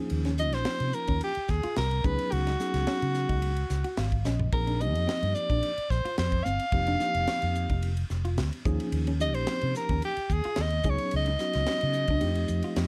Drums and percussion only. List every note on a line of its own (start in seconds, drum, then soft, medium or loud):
0.10 ride medium
0.25 snare soft
0.25 ride medium
0.38 hi-hat pedal medium
0.53 snare soft
0.53 ride medium
0.65 snare loud
0.65 ride medium
0.80 ride medium
0.93 hi-hat pedal medium
1.07 kick medium
1.07 ride medium
1.21 ride medium
1.35 ride medium
1.48 kick medium
1.48 snare soft
1.48 hi-hat pedal medium
1.63 ride medium
1.76 snare medium
1.76 ride medium
1.91 ride soft
2.04 kick medium
2.04 hi-hat pedal medium
2.19 ride medium
2.32 ride medium
2.47 snare soft
2.47 ride medium
2.60 snare soft
2.60 hi-hat pedal medium
2.74 snare soft
2.74 ride medium
2.87 snare loud
2.87 ride medium
3.02 ride medium
3.14 snare soft
3.14 hi-hat pedal medium
3.29 kick medium
3.29 ride medium
3.42 ride medium
3.57 ride medium
3.70 snare soft
3.70 hi-hat pedal medium
3.84 ride medium
3.97 snare loud
3.97 ride medium
4.12 kick medium
4.12 ride soft
4.25 snare medium
4.25 hi-hat pedal medium
4.40 floor tom medium
4.52 kick loud
4.52 ride medium
4.67 ride soft
4.81 hi-hat pedal medium
4.95 ride medium
5.09 snare loud
5.09 ride medium
5.23 ride medium
5.35 hi-hat pedal medium
5.50 kick medium
5.50 ride soft
5.63 ride medium
5.78 ride soft
5.90 kick medium
5.90 snare soft
5.90 hi-hat pedal medium
6.05 ride medium
6.18 snare medium
6.18 ride medium
6.32 kick medium
6.32 ride soft
6.46 hi-hat pedal medium
6.59 ride medium
6.72 kick loud
6.72 ride medium
6.87 ride medium
7.00 snare soft
7.00 hi-hat pedal medium
7.15 ride medium
7.27 snare loud
7.27 ride medium
7.42 ride medium
7.55 hi-hat pedal medium
7.70 kick medium
7.70 ride medium
7.83 ride medium
7.97 ride medium
8.10 snare soft
8.10 hi-hat pedal medium
8.25 ride medium
8.38 snare medium
8.38 ride medium
8.53 ride medium
8.65 kick loud
8.65 hi-hat pedal medium
8.80 ride medium
8.92 ride medium
9.07 ride medium
9.20 hi-hat pedal medium
9.34 ride medium
9.47 snare loud
9.47 ride medium
9.61 ride medium
9.75 snare soft
9.75 hi-hat pedal medium
9.89 kick medium
9.89 ride medium
10.02 ride medium
10.17 ride medium
10.30 kick medium
10.30 hi-hat pedal medium
10.44 ride medium
10.56 snare loud
10.56 ride medium
10.70 ride medium
10.84 kick medium
10.84 hi-hat pedal medium
10.98 ride medium
11.11 ride medium
11.26 ride medium
11.39 snare soft
11.39 hi-hat pedal medium
11.53 snare soft
11.53 ride medium
11.66 snare loud
11.66 ride medium
11.81 ride medium
11.93 hi-hat pedal medium
12.08 kick medium
12.08 ride medium
12.21 ride medium
12.35 ride medium
12.48 hi-hat pedal medium
12.63 ride medium
12.76 snare loud
12.76 ride medium